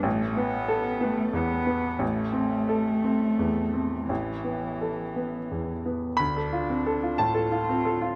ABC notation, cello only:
X:1
M:6/8
L:1/8
Q:3/8=60
K:Ephr
V:1 name="Cello"
A, B,2 A, B,2 | A,6 | E,4- E, z | D3 F3 |]